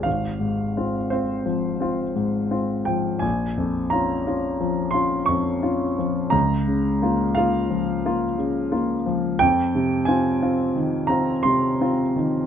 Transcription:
\new Staff \with { instrumentName = "Grand piano" } { \time 9/8 \key bes \dorian \tempo 4. = 58 << { f''4. c''2 r8 g''8 | aes''4 bes''4. c'''8 des'''4. | bes''4. f''2 r4 | \key f \dorian g''4 aes''4. bes''8 c'''4. | } \\ { aes,,8 aes,8 <c' f'>8 <c' f'>8 f8 <c' f'>8 aes,8 <c' f'>8 f8 | bes,,8 f,8 <des' f'>8 <des' f'>8 f8 <des' f'>8 f,8 <des' f'>8 f8 | des,8 des8 <bes f'>8 <bes f'>8 f8 <bes f'>8 des8 <bes f'>8 f8 | f,8 c8 <c' f'>8 <c' f'>8 ees8 <c' f'>8 c8 <c' f'>8 ees8 | } >> }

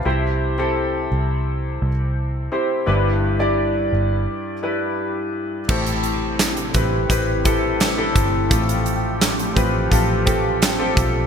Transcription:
<<
  \new Staff \with { instrumentName = "Grand piano" } { \time 4/4 \key a \minor \tempo 4 = 85 << { <e'' a''>16 r2. r8. | r1 | r1 | r1 | } \\ { <c' e' g' c''>8. <c' e' g' a'>4.~ <c' e' g' a'>16 r4 <c' e' g' c''>8 | <d' e' g' b'>8. <d' e' g' d''>4. r16 <d' e' g' b'>4. | <c' e' g' a'>4. <c' e' g' b'>8 <c' e' g' b'>8 <c' e' g' a'>8. <c' e' g' a'>8. | <c' f' g' a'>4. <c' f' g' b'>8 <c' f' g' a'>8 <c' f' g' a'>8. <c' f' g' a'>8. | } >> }
  \new Staff \with { instrumentName = "Grand piano" } { \clef bass \time 4/4 \key a \minor c4. r2 r8 | g,4. r2 r8 | a,4. r2 r8 | a,4. r2 r8 | }
  \new Staff \with { instrumentName = "Analog synth pad" } { \clef bass \time 4/4 \key a \minor << { r1 | r1 | <a g'>1~ | <a g'>1 | } \\ { r1 | r1 | c1 | f1 | } >> }
  \new Staff \with { instrumentName = "Fingered electric bass" } { \clef bass \time 4/4 \key a \minor c,4. c,4 c,4 r8 | g,,4. g,,8 r2 | a,,4. a,,8 a,,4. g,,8 | a,,4. a,,8 a,,4. b,,8 | }
  \new DrumStaff \with { instrumentName = "Drums" } \drummode { \time 4/4 r4 r4 r4 r4 | r4 r4 r4 r4 | <cymc bd>16 hh16 hh8 <hc hh sn>16 hh16 <hh bd>8 <hh bd>8 <hh bd>8 <hc hh sn>8 <hh bd>8 | <hh bd>16 hh16 hh8 <hc hh sn>16 hh16 <hh bd>8 <hh bd>8 <hh bd>8 <hc hh sn>8 <hh bd>8 | }
>>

